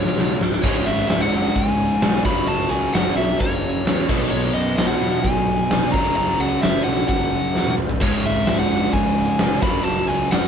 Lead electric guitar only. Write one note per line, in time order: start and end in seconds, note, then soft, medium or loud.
0.00 0.37 C#5 medium
0.62 0.87 C#5 loud
0.86 1.08 E5 medium
1.09 1.21 E5 medium
1.21 1.56 F#5 loud
1.55 2.21 G#5 loud
2.26 2.48 B5 loud
2.48 2.70 A5 loud
2.70 2.94 G#5 loud
2.94 3.15 F#5 loud
3.17 3.38 E5 medium
3.40 4.05 C#5 medium
4.31 4.53 C#5 loud
4.53 4.75 D#5 medium
4.77 4.87 D#5 loud
4.87 5.24 F#5 medium
5.23 5.89 G#5 loud
5.92 6.15 A#5 loud
6.16 6.40 A#5 loud
6.40 6.61 F#5 loud
6.62 6.84 E5 loud
6.84 7.07 F#5 loud
7.08 7.74 F#5 medium
8.02 8.25 C#5 loud
8.26 8.48 E5 medium
8.49 8.59 E5 medium
8.59 8.94 F#5 medium
8.93 9.62 G#5 loud
9.63 9.84 B5 loud
9.84 10.08 A5 loud
10.08 10.32 G#5 loud
10.31 10.48 F#5 medium